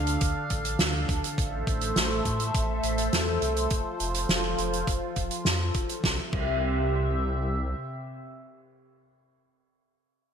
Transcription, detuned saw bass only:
0, 0, Header, 1, 2, 480
1, 0, Start_track
1, 0, Key_signature, 0, "major"
1, 0, Tempo, 582524
1, 1135, Time_signature, 4, 2, 24, 8
1, 8519, End_track
2, 0, Start_track
2, 0, Title_t, "Detuned saw bass"
2, 0, Program_c, 0, 39
2, 0, Note_on_c, 0, 38, 85
2, 147, Note_off_c, 0, 38, 0
2, 177, Note_on_c, 0, 38, 82
2, 282, Note_off_c, 0, 38, 0
2, 417, Note_on_c, 0, 33, 80
2, 628, Note_off_c, 0, 33, 0
2, 657, Note_on_c, 0, 38, 83
2, 868, Note_off_c, 0, 38, 0
2, 898, Note_on_c, 0, 38, 105
2, 1002, Note_off_c, 0, 38, 0
2, 1138, Note_on_c, 0, 33, 96
2, 1348, Note_off_c, 0, 33, 0
2, 1377, Note_on_c, 0, 33, 103
2, 1588, Note_off_c, 0, 33, 0
2, 1617, Note_on_c, 0, 33, 100
2, 1828, Note_off_c, 0, 33, 0
2, 1858, Note_on_c, 0, 45, 95
2, 2068, Note_off_c, 0, 45, 0
2, 2099, Note_on_c, 0, 33, 106
2, 2309, Note_off_c, 0, 33, 0
2, 2335, Note_on_c, 0, 33, 100
2, 2547, Note_off_c, 0, 33, 0
2, 2577, Note_on_c, 0, 40, 89
2, 2788, Note_off_c, 0, 40, 0
2, 2817, Note_on_c, 0, 36, 93
2, 3028, Note_off_c, 0, 36, 0
2, 3057, Note_on_c, 0, 29, 81
2, 3162, Note_off_c, 0, 29, 0
2, 3298, Note_on_c, 0, 29, 92
2, 3509, Note_off_c, 0, 29, 0
2, 3537, Note_on_c, 0, 29, 84
2, 3748, Note_off_c, 0, 29, 0
2, 3778, Note_on_c, 0, 29, 86
2, 3988, Note_off_c, 0, 29, 0
2, 4017, Note_on_c, 0, 29, 82
2, 4122, Note_off_c, 0, 29, 0
2, 4257, Note_on_c, 0, 29, 84
2, 4362, Note_off_c, 0, 29, 0
2, 4496, Note_on_c, 0, 41, 95
2, 4707, Note_off_c, 0, 41, 0
2, 4735, Note_on_c, 0, 29, 98
2, 4841, Note_off_c, 0, 29, 0
2, 4975, Note_on_c, 0, 36, 92
2, 5109, Note_off_c, 0, 36, 0
2, 5215, Note_on_c, 0, 36, 93
2, 6383, Note_off_c, 0, 36, 0
2, 8519, End_track
0, 0, End_of_file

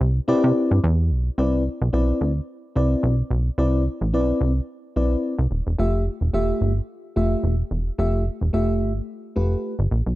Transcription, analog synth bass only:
0, 0, Header, 1, 2, 480
1, 0, Start_track
1, 0, Key_signature, 0, "major"
1, 0, Tempo, 550459
1, 1205, Time_signature, 4, 2, 24, 8
1, 8853, End_track
2, 0, Start_track
2, 0, Title_t, "Analog synth bass"
2, 0, Program_c, 0, 38
2, 6, Note_on_c, 0, 36, 96
2, 176, Note_off_c, 0, 36, 0
2, 246, Note_on_c, 0, 48, 52
2, 300, Note_off_c, 0, 48, 0
2, 383, Note_on_c, 0, 48, 99
2, 457, Note_off_c, 0, 48, 0
2, 621, Note_on_c, 0, 43, 93
2, 696, Note_off_c, 0, 43, 0
2, 730, Note_on_c, 0, 40, 114
2, 964, Note_on_c, 0, 35, 102
2, 977, Note_off_c, 0, 40, 0
2, 1135, Note_off_c, 0, 35, 0
2, 1204, Note_on_c, 0, 36, 105
2, 1471, Note_off_c, 0, 36, 0
2, 1582, Note_on_c, 0, 35, 100
2, 1656, Note_off_c, 0, 35, 0
2, 1684, Note_on_c, 0, 35, 99
2, 1855, Note_off_c, 0, 35, 0
2, 1928, Note_on_c, 0, 38, 92
2, 2098, Note_off_c, 0, 38, 0
2, 2407, Note_on_c, 0, 36, 92
2, 2577, Note_off_c, 0, 36, 0
2, 2643, Note_on_c, 0, 35, 105
2, 2815, Note_off_c, 0, 35, 0
2, 2882, Note_on_c, 0, 35, 96
2, 3054, Note_off_c, 0, 35, 0
2, 3120, Note_on_c, 0, 36, 113
2, 3389, Note_off_c, 0, 36, 0
2, 3500, Note_on_c, 0, 33, 101
2, 3604, Note_on_c, 0, 35, 91
2, 3617, Note_off_c, 0, 33, 0
2, 3775, Note_off_c, 0, 35, 0
2, 3844, Note_on_c, 0, 36, 92
2, 4015, Note_off_c, 0, 36, 0
2, 4328, Note_on_c, 0, 35, 85
2, 4498, Note_off_c, 0, 35, 0
2, 4696, Note_on_c, 0, 36, 95
2, 4772, Note_off_c, 0, 36, 0
2, 4802, Note_on_c, 0, 27, 88
2, 4899, Note_off_c, 0, 27, 0
2, 4941, Note_on_c, 0, 28, 91
2, 5015, Note_off_c, 0, 28, 0
2, 5044, Note_on_c, 0, 29, 105
2, 5311, Note_off_c, 0, 29, 0
2, 5417, Note_on_c, 0, 28, 80
2, 5493, Note_off_c, 0, 28, 0
2, 5522, Note_on_c, 0, 28, 89
2, 5694, Note_off_c, 0, 28, 0
2, 5763, Note_on_c, 0, 31, 83
2, 5935, Note_off_c, 0, 31, 0
2, 6244, Note_on_c, 0, 29, 85
2, 6415, Note_off_c, 0, 29, 0
2, 6483, Note_on_c, 0, 28, 92
2, 6655, Note_off_c, 0, 28, 0
2, 6723, Note_on_c, 0, 28, 90
2, 6895, Note_off_c, 0, 28, 0
2, 6964, Note_on_c, 0, 29, 115
2, 7231, Note_off_c, 0, 29, 0
2, 7337, Note_on_c, 0, 28, 90
2, 7413, Note_off_c, 0, 28, 0
2, 7444, Note_on_c, 0, 29, 90
2, 7684, Note_on_c, 0, 31, 80
2, 7697, Note_off_c, 0, 29, 0
2, 7855, Note_off_c, 0, 31, 0
2, 8166, Note_on_c, 0, 29, 83
2, 8336, Note_off_c, 0, 29, 0
2, 8535, Note_on_c, 0, 31, 98
2, 8612, Note_off_c, 0, 31, 0
2, 8645, Note_on_c, 0, 34, 95
2, 8741, Note_off_c, 0, 34, 0
2, 8776, Note_on_c, 0, 35, 85
2, 8853, Note_off_c, 0, 35, 0
2, 8853, End_track
0, 0, End_of_file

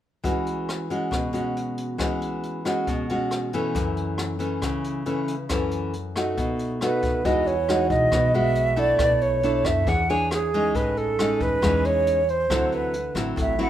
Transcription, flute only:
0, 0, Header, 1, 2, 480
1, 0, Start_track
1, 0, Key_signature, 4, "major"
1, 0, Tempo, 437637
1, 262, Time_signature, 4, 2, 24, 8
1, 15023, End_track
2, 0, Start_track
2, 0, Title_t, "Flute"
2, 0, Program_c, 0, 73
2, 7493, Note_on_c, 0, 71, 70
2, 7957, Note_on_c, 0, 75, 74
2, 7973, Note_off_c, 0, 71, 0
2, 8191, Note_on_c, 0, 73, 72
2, 8208, Note_off_c, 0, 75, 0
2, 8659, Note_off_c, 0, 73, 0
2, 8665, Note_on_c, 0, 75, 78
2, 9156, Note_on_c, 0, 76, 87
2, 9172, Note_off_c, 0, 75, 0
2, 9642, Note_on_c, 0, 74, 87
2, 9658, Note_off_c, 0, 76, 0
2, 10113, Note_on_c, 0, 73, 76
2, 10129, Note_off_c, 0, 74, 0
2, 10596, Note_on_c, 0, 76, 76
2, 10612, Note_off_c, 0, 73, 0
2, 10843, Note_on_c, 0, 78, 86
2, 10860, Note_off_c, 0, 76, 0
2, 11078, Note_on_c, 0, 80, 84
2, 11094, Note_off_c, 0, 78, 0
2, 11312, Note_off_c, 0, 80, 0
2, 11331, Note_on_c, 0, 68, 78
2, 11798, Note_on_c, 0, 71, 73
2, 11814, Note_off_c, 0, 68, 0
2, 12039, Note_on_c, 0, 69, 79
2, 12055, Note_off_c, 0, 71, 0
2, 12526, Note_on_c, 0, 71, 83
2, 12542, Note_off_c, 0, 69, 0
2, 13006, Note_on_c, 0, 73, 93
2, 13022, Note_off_c, 0, 71, 0
2, 13493, Note_on_c, 0, 72, 80
2, 13509, Note_off_c, 0, 73, 0
2, 13974, Note_on_c, 0, 71, 68
2, 13990, Note_off_c, 0, 72, 0
2, 14439, Note_off_c, 0, 71, 0
2, 14712, Note_on_c, 0, 76, 74
2, 14913, Note_off_c, 0, 76, 0
2, 14939, Note_on_c, 0, 78, 74
2, 15023, Note_off_c, 0, 78, 0
2, 15023, End_track
0, 0, End_of_file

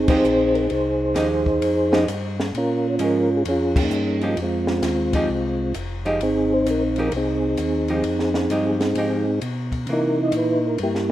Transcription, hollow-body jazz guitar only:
0, 0, Header, 1, 2, 480
1, 0, Start_track
1, 0, Key_signature, -4, "minor"
1, 0, Tempo, 458716
1, 734, Time_signature, 4, 2, 24, 8
1, 11632, End_track
2, 0, Start_track
2, 0, Title_t, "Hollow-body jazz guitar"
2, 0, Program_c, 0, 26
2, 92, Note_on_c, 0, 53, 60
2, 99, Note_on_c, 0, 56, 75
2, 105, Note_on_c, 0, 63, 75
2, 106, Note_on_c, 0, 67, 70
2, 237, Note_off_c, 0, 53, 0
2, 240, Note_off_c, 0, 56, 0
2, 243, Note_off_c, 0, 63, 0
2, 244, Note_off_c, 0, 67, 0
2, 1197, Note_on_c, 0, 53, 61
2, 1206, Note_on_c, 0, 56, 56
2, 1211, Note_on_c, 0, 63, 71
2, 1211, Note_on_c, 0, 67, 67
2, 1495, Note_off_c, 0, 53, 0
2, 1499, Note_off_c, 0, 56, 0
2, 1502, Note_off_c, 0, 63, 0
2, 1502, Note_off_c, 0, 67, 0
2, 2008, Note_on_c, 0, 53, 62
2, 2019, Note_on_c, 0, 63, 68
2, 2021, Note_on_c, 0, 56, 57
2, 2026, Note_on_c, 0, 67, 65
2, 2155, Note_off_c, 0, 53, 0
2, 2161, Note_off_c, 0, 63, 0
2, 2162, Note_off_c, 0, 56, 0
2, 2165, Note_off_c, 0, 67, 0
2, 3132, Note_on_c, 0, 53, 54
2, 3143, Note_on_c, 0, 56, 61
2, 3148, Note_on_c, 0, 61, 52
2, 3423, Note_off_c, 0, 53, 0
2, 3428, Note_off_c, 0, 56, 0
2, 3430, Note_off_c, 0, 61, 0
2, 4421, Note_on_c, 0, 53, 66
2, 4426, Note_on_c, 0, 56, 73
2, 4432, Note_on_c, 0, 63, 60
2, 4434, Note_on_c, 0, 67, 64
2, 4563, Note_off_c, 0, 53, 0
2, 4565, Note_off_c, 0, 56, 0
2, 4568, Note_off_c, 0, 63, 0
2, 4569, Note_off_c, 0, 67, 0
2, 5384, Note_on_c, 0, 53, 71
2, 5387, Note_on_c, 0, 63, 72
2, 5388, Note_on_c, 0, 56, 74
2, 5396, Note_on_c, 0, 67, 74
2, 5524, Note_off_c, 0, 53, 0
2, 5525, Note_off_c, 0, 63, 0
2, 5526, Note_off_c, 0, 56, 0
2, 5530, Note_off_c, 0, 67, 0
2, 6334, Note_on_c, 0, 53, 71
2, 6342, Note_on_c, 0, 56, 75
2, 6344, Note_on_c, 0, 63, 72
2, 6347, Note_on_c, 0, 67, 71
2, 6478, Note_off_c, 0, 53, 0
2, 6482, Note_off_c, 0, 56, 0
2, 6483, Note_off_c, 0, 63, 0
2, 6485, Note_off_c, 0, 67, 0
2, 7304, Note_on_c, 0, 53, 65
2, 7310, Note_on_c, 0, 56, 61
2, 7316, Note_on_c, 0, 63, 72
2, 7317, Note_on_c, 0, 67, 71
2, 7443, Note_off_c, 0, 53, 0
2, 7446, Note_off_c, 0, 56, 0
2, 7449, Note_off_c, 0, 63, 0
2, 7450, Note_off_c, 0, 67, 0
2, 8259, Note_on_c, 0, 53, 60
2, 8261, Note_on_c, 0, 56, 57
2, 8265, Note_on_c, 0, 63, 75
2, 8271, Note_on_c, 0, 67, 63
2, 8401, Note_off_c, 0, 53, 0
2, 8401, Note_off_c, 0, 56, 0
2, 8403, Note_off_c, 0, 63, 0
2, 8407, Note_off_c, 0, 67, 0
2, 8906, Note_on_c, 0, 53, 56
2, 8906, Note_on_c, 0, 56, 65
2, 8913, Note_on_c, 0, 63, 59
2, 8919, Note_on_c, 0, 67, 64
2, 9188, Note_off_c, 0, 53, 0
2, 9188, Note_off_c, 0, 56, 0
2, 9192, Note_off_c, 0, 63, 0
2, 9195, Note_off_c, 0, 67, 0
2, 9394, Note_on_c, 0, 53, 50
2, 9396, Note_on_c, 0, 63, 68
2, 9397, Note_on_c, 0, 56, 62
2, 9403, Note_on_c, 0, 67, 65
2, 9672, Note_off_c, 0, 53, 0
2, 9673, Note_off_c, 0, 63, 0
2, 9674, Note_off_c, 0, 56, 0
2, 9677, Note_off_c, 0, 67, 0
2, 10350, Note_on_c, 0, 52, 57
2, 10358, Note_on_c, 0, 58, 62
2, 11078, Note_off_c, 0, 52, 0
2, 11082, Note_off_c, 0, 58, 0
2, 11632, End_track
0, 0, End_of_file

